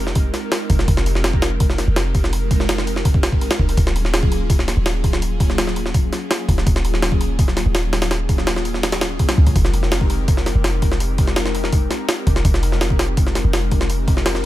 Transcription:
Already playing: F1 G#3 C4 D#4 G4 A#4
0.07 snare
0.15 kick, open hi-hat
0.34 G#3 C4 D#4 G4 A#4, snare, open hi-hat
0.52 snare, open hi-hat
0.70 F1, kick, open hi-hat
0.79 snare
0.88 F1 G#3 C4 D#4 G4 A#4, kick, open hi-hat
0.97 snare
1.06 open hi-hat
1.15 snare
1.24 snare, open hi-hat
1.33 kick
1.42 snare, open hi-hat
1.60 kick, open hi-hat
1.70 snare
1.78 G#3 C4 D#4 G4 A#4, snare, open hi-hat
1.88 F1
1.96 snare, open hi-hat
2.15 kick, open hi-hat
2.24 snare
2.32 G#3 C4 D#4 G4 A#4, open hi-hat
2.51 kick, open hi-hat
2.60 snare
2.69 snare, open hi-hat
2.78 snare
2.87 open hi-hat
2.96 snare
3.05 kick, open hi-hat
3.14 kick
3.23 G#3 C4 D#4 G4 A#4, snare, open hi-hat
3.32 kick
3.41 G1, open hi-hat
3.51 snare, open hi-hat
3.59 D#1, kick
3.69 open hi-hat
3.77 D#1 F#3 A#3 C#4 F4 G#4, kick, open hi-hat
3.87 snare
3.96 open hi-hat
4.05 snare
4.14 snare, open hi-hat
4.23 kick
4.32 open hi-hat
4.50 kick, open hi-hat
4.59 snare
4.68 F#3 A#3 C#4 F4 G#4, snare, open hi-hat
4.77 D#1
4.86 snare, open hi-hat
5.04 kick, open hi-hat
5.13 snare
5.22 F#3 A#3 C#4 F4 G#4, open hi-hat
5.40 kick, open hi-hat
5.50 snare
5.58 snare, open hi-hat
5.67 snare
5.76 open hi-hat
5.86 snare
5.94 kick, open hi-hat
6.12 F#3 A#3 C#4 F4 G#4, snare, open hi-hat
6.31 snare, open hi-hat
6.48 D#1, kick, open hi-hat
6.58 snare
6.67 D#1 F#3 A#3 C#4 F4 G#4, kick, open hi-hat
6.76 snare
6.85 open hi-hat
6.94 snare
7.02 snare, open hi-hat
7.12 kick
7.21 open hi-hat
7.39 kick, open hi-hat
7.48 snare
7.57 F#3 A#3 C#4 F4 G#4, snare, open hi-hat
7.66 D#1
7.75 snare, open hi-hat
7.93 snare, open hi-hat
8.02 snare, open hi-hat
8.11 F#3 A#3 C#4 F4 G#4, snare, open hi-hat
8.29 kick, open hi-hat
8.38 snare
8.47 snare, open hi-hat
8.56 snare
8.65 open hi-hat
8.74 snare
8.83 snare, open hi-hat
8.92 snare, open hi-hat
9.01 F#3 A#3 C#4 F4 G#4, snare, open hi-hat
9.19 F1, kick, open hi-hat
9.29 snare, open hi-hat
9.38 C#2
9.47 kick, open hi-hat
9.55 F1 G#3 C4 D#4 G4 A#4, kick, open hi-hat
9.65 snare
9.74 open hi-hat
9.83 snare
9.92 snare, open hi-hat
10.01 kick
10.10 open hi-hat
10.28 kick, open hi-hat
10.37 snare
10.46 G#3 C4 D#4 G4 A#4, snare, open hi-hat
10.55 F1
10.64 snare, open hi-hat
10.82 kick, open hi-hat
10.92 snare
11.00 G#3 C4 D#4 G4 A#4, open hi-hat
11.18 kick, open hi-hat
11.27 snare
11.36 snare, open hi-hat
11.46 snare
11.55 open hi-hat
11.64 snare
11.72 kick, open hi-hat
11.90 G#3 C4 D#4 G4 A#4, snare, open hi-hat
12.09 snare, open hi-hat
12.27 F1, kick, open hi-hat
12.36 snare
12.45 F1 G#3 C4 D#4 G4 A#4, kick, open hi-hat
12.54 snare
12.63 open hi-hat
12.72 snare
12.81 snare, open hi-hat
12.90 kick
12.99 snare, open hi-hat
13.17 kick, open hi-hat
13.27 snare
13.35 G#3 C4 D#4 G4 A#4, snare, open hi-hat
13.44 F1
13.53 snare, open hi-hat
13.71 kick, open hi-hat
13.81 snare
13.89 G#3 C4 D#4 G4 A#4, open hi-hat
14.08 kick, open hi-hat
14.17 snare
14.26 snare, open hi-hat
14.35 snare

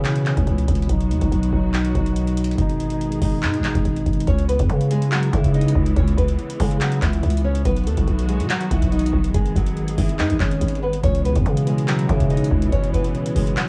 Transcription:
Already playing: B2 C#3 E3 G#3 B3 C#4 E4
0.05 clap, closed hi-hat
0.16 closed hi-hat
0.23 B2 E3, clap, closed hi-hat
0.29 C#4
0.37 C#2, kick, closed hi-hat
0.47 C#2, closed hi-hat
0.58 closed hi-hat
0.68 C#2, kick, closed hi-hat
0.75 closed hi-hat
0.82 B2, closed hi-hat
0.89 B1 D#3 F#3 D#4 F#4, kick, closed hi-hat
1.01 closed hi-hat
1.10 D#2, closed hi-hat
1.19 B1 B2 F#3, kick, closed hi-hat
1.25 D#4
1.32 B1, closed hi-hat
1.43 closed hi-hat
1.50 B1 B2 F#3, kick
1.56 D#4
1.74 clap, closed hi-hat
1.85 closed hi-hat
1.92 B1 B2 F#3, kick, closed hi-hat
1.98 D#4
2.06 closed hi-hat
2.16 closed hi-hat
2.27 closed hi-hat
2.37 closed hi-hat
2.44 closed hi-hat
2.51 closed hi-hat
2.56 G#1 B2 G#3 G#4, kick, closed hi-hat
2.61 D#4
2.69 closed hi-hat
2.80 closed hi-hat
2.88 B2 G#3, closed hi-hat
2.94 D#4
3.01 closed hi-hat
3.12 closed hi-hat
3.19 G#1 B2 G#3, kick, open hi-hat
3.25 D#4
3.43 G#2, clap, closed hi-hat
3.54 closed hi-hat
3.59 G#1 B2
3.64 G#3 D#4, clap, closed hi-hat
3.75 G#1, kick, closed hi-hat
3.85 G#1, closed hi-hat
3.96 closed hi-hat
4.06 G#1, kick, closed hi-hat
4.13 closed hi-hat
4.20 closed hi-hat
4.27 C#2 C#3 E3 G#3 B3 C#4 C#5, kick, closed hi-hat
4.39 closed hi-hat
4.48 B3 B4, closed hi-hat
4.59 E2, kick, closed hi-hat
4.70 C#3, closed hi-hat
4.81 closed hi-hat
4.91 G#3 G#4, closed hi-hat
5.02 closed hi-hat
5.12 F#3 F#4, clap, closed hi-hat
5.23 closed hi-hat
5.33 C#3 E3 E4, kick, closed hi-hat
5.44 kick, closed hi-hat
5.54 D#4 D#5, closed hi-hat
5.61 closed hi-hat
5.68 closed hi-hat
5.75 C#2, kick
5.86 closed hi-hat
5.96 C#2 C#4 C#5, kick, closed hi-hat
6.08 closed hi-hat
6.17 C#2 B3 B4, kick, closed hi-hat
6.28 closed hi-hat
6.39 closed hi-hat
6.50 closed hi-hat
6.60 C#3 G#3 G#4, kick, open hi-hat
6.71 closed hi-hat
6.81 F#3 F#4, clap, closed hi-hat
6.92 closed hi-hat
7.02 C#2 E3 E4, kick, clap, closed hi-hat
7.13 closed hi-hat
7.23 C#2, closed hi-hat
7.30 closed hi-hat
7.37 closed hi-hat
7.44 C#4 C#5
7.55 closed hi-hat
7.65 B1 D#3 F#3 B3 F#4 B4, kick, closed hi-hat
7.77 closed hi-hat
7.86 D#2 A3 A4, closed hi-hat
7.97 B1, kick, closed hi-hat
8.08 B1, closed hi-hat
8.19 closed hi-hat
8.29 G#3 G#4, closed hi-hat
8.40 B2, closed hi-hat
8.50 F#3 F#4, clap, closed hi-hat
8.61 closed hi-hat
8.71 B1 E3 E4, kick, closed hi-hat
8.82 kick, closed hi-hat
8.92 D#4 D#5, closed hi-hat
8.99 closed hi-hat
9.06 closed hi-hat
9.13 B1, kick
9.24 closed hi-hat
9.34 G#1 G#3 G#4, kick, closed hi-hat
9.46 closed hi-hat
9.55 G#1 F#3 F#4, kick, closed hi-hat
9.66 closed hi-hat
9.77 closed hi-hat
9.88 closed hi-hat
9.98 G#1 E3 E4, kick, open hi-hat
10.09 closed hi-hat
10.19 G#2 D#4 D#5, clap, closed hi-hat
10.30 G#1, closed hi-hat
10.40 G#1 C#4 C#5, kick, clap, closed hi-hat
10.51 closed hi-hat
10.61 G#1, closed hi-hat
10.68 closed hi-hat
10.75 closed hi-hat
10.82 B3 B4
10.93 closed hi-hat
11.01 C#2 B2 C#3 E3 B3 C#4 C#5, kick, closed hi-hat
11.07 C#4
11.15 closed hi-hat
11.24 B3 B4, closed hi-hat
11.32 E2 B2 E3, kick, closed hi-hat
11.38 C#4
11.46 C#3, closed hi-hat
11.57 closed hi-hat
11.64 B2 E3 G#3 G#4, closed hi-hat
11.70 C#4
11.78 closed hi-hat
11.88 F#3 F#4, clap, closed hi-hat
11.99 closed hi-hat
12.06 B2 C#3 E3 E4, kick, closed hi-hat
12.12 C#4
12.20 kick, closed hi-hat
12.30 D#4 D#5, closed hi-hat
12.37 closed hi-hat
12.44 closed hi-hat
12.51 C#2, kick
12.62 closed hi-hat
12.69 B2 E3 C#4 C#5, kick, closed hi-hat
12.75 C#4
12.84 closed hi-hat
12.94 B3 B4, kick, closed hi-hat
13.01 B2 E3, closed hi-hat
13.07 B3
13.15 closed hi-hat
13.26 closed hi-hat
13.33 B2 E3 G#3 G#4, kick, open hi-hat
13.39 C#4
13.47 closed hi-hat
13.57 F#3 F#4, clap, closed hi-hat

